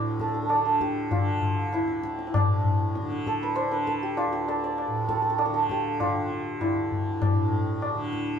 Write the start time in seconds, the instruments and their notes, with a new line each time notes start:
Already playing: tanpura D2 A2 D3, santur D4 E4
0.20 santur A4, tabla ke
0.28 santur A4
0.34 santur A4
0.42 santur A4
0.49 santur A4, tabla na
0.54 tanpura D3, santur A4
0.65 santur A4
0.81 santur G4, tabla ke
1.11 santur F4, tabla na, tabla ge
1.15 tanpura D3
1.42 tabla ge
1.73 santur E4, tabla te
1.78 tanpura D2
1.88 tabla te
2.03 tabla ke
2.19 tabla te
2.27 santur E4
2.34 santur D4, tabla na, tabla ge
2.40 tanpura A2
2.65 tabla ge
2.95 tabla te
3.02 tanpura D3
3.11 tabla te
3.26 santur A4, tabla ke
3.41 santur B4, tabla te
3.55 santur C5, tabla na
3.64 tanpura D3
3.71 santur B4
3.87 santur A4, tabla ke
4.03 santur G4
4.17 santur F4, tabla na
4.26 tanpura D2
4.33 santur G4
4.48 santur A4, tabla na
4.64 santur D5
4.78 tabla na
4.87 tanpura A2
5.08 santur A4, tabla ke
5.15 santur A4
5.22 santur A4
5.30 santur A4
5.38 santur A4, tabla na
5.46 tanpura D3, santur A4
5.54 santur A4
5.70 santur G4, tabla ke
6.00 santur F4, tabla na, tabla ge
6.10 tanpura D3
6.30 tabla te
6.61 santur E4, tabla na, tabla ge
6.73 tanpura D2
6.92 tabla ge
7.22 santur D4, tabla na, tabla ge
7.33 tanpura A2
7.52 tabla ge
7.82 tabla na
7.94 tanpura D3
8.13 tabla ke